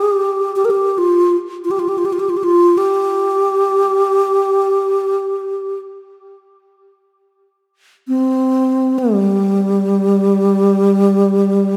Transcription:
Already playing: G4
0.56 G4
0.65 A#4
0.70 G4
0.98 F4
1.64 F4
1.71 G4
1.79 F4
1.89 G4
1.98 F4
2.05 G4
2.13 F4
2.19 G4
2.29 F4
2.37 G4
2.44 F4
2.78 G4
8.08 C4
8.98 G3

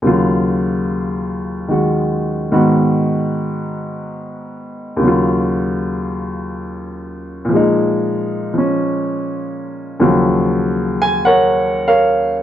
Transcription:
0.02 D#2 C#3 F#3
0.07 F4
1.68 D#3 G#3 F#4
2.52 G#2 D#3 B3 F#4
4.97 D#2 C#3
5.04 F#3 F4
7.45 A#2
7.49 F3 G#3
7.56 D#4
8.54 F3
8.58 C#4
10.00 D#2 C#3 F3 F#3
11.02 G#5
11.25 A#4 C#5 F#5
11.88 A#4 C#5 F5

